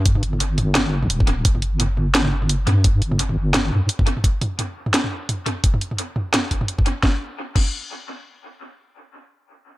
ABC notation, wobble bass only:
X:1
M:4/4
L:1/16
Q:"Swing 16ths" 1/4=172
K:Gm
V:1 name="Wobble bass" clef=bass
G,,2 G,,,4 G,,,4- G,,, B,,, D,,,4 | G,,,12- G,,,2 G,,2- | G,,2 G,,,4 G,,,4 G,,2 z4 | z16 |
z16 | z16 | z16 |]